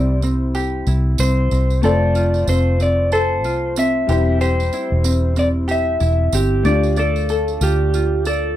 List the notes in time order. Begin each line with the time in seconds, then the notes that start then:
Already playing: C2 G3 C4 E4 G4 C5 D5
0.22 C4, tambourine
0.55 G4, tambourine
0.87 C2 E4, tambourine
1.18 C2 C4 C5, tambourine
1.51 C2 C4, tambourine
1.70 tambourine
1.81 F1 A3 C4 F4 A4 C5 D5, tambourine
2.15 F4, tambourine
2.34 tambourine
2.47 F1 C4 C5, tambourine
2.80 C4 D5, tambourine
3.12 A4 C5, tambourine
3.44 C2 F4, tambourine
3.76 C4 E5, tambourine
4.07 E1 G3 C4 E4 G4 C5, tambourine
4.41 G4 C5, tambourine
4.60 tambourine
4.73 E4, tambourine
4.92 E1
5.04 C4, tambourine
5.36 C4 D5, tambourine
5.68 G4 E5, tambourine
6.00 E1 E4, tambourine
6.33 G1 C4 G4, tambourine
6.63 D2 A3 D4 F4 D5, tambourine
6.68 D5
6.83 tambourine
6.96 A4 D5, tambourine
7.16 tambourine
7.29 A4, tambourine
7.48 tambourine
7.61 D2 F4 G4, tambourine
7.94 F4, tambourine
8.25 A4 D5, tambourine